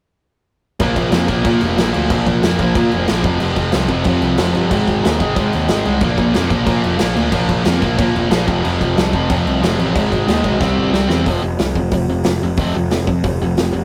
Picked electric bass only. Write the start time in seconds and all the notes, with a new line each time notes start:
0.81 A#1
0.97 A#1
1.12 F2
1.29 A#1
1.45 A#2
1.62 F1
1.79 A#1
1.95 D2
2.11 A#1
2.27 A#1
2.43 F2
2.60 A#1
2.75 A#2
2.93 F1
3.11 A#1
3.24 F1
3.41 F1
3.57 F1
3.73 C2
3.89 F1
4.06 F2
4.22 C2
4.38 F1
4.56 G1
4.72 G#1
4.88 G#1
5.06 D#2
5.21 G#1
5.37 G#2
5.54 D#2
5.69 G#1
5.86 C2
6.01 A#1
6.18 A#1
6.36 F2
6.51 A#1
6.67 A#2
6.85 F1
7.01 A#1
7.16 D2
7.33 A#1
7.49 A#1
7.66 F2
7.82 A#1
7.99 A#2
8.16 F1
8.32 A#1
8.48 F1
8.65 F1
8.81 F1
8.98 C2
9.14 F1
9.30 F2
9.46 C2
9.63 F1
9.79 A1
9.96 G#1
10.12 G#1
10.28 D#2
10.45 B1
10.61 C2
10.77 G1
10.93 C2
11.09 E2
11.27 F1
11.43 F1
11.60 C2
11.76 F1
11.92 F1
12.08 F1
12.25 F1
12.43 F1
12.59 F1
12.76 F1
12.92 F1
13.08 F2
13.25 F1
13.41 F1
13.57 F1
13.73 F1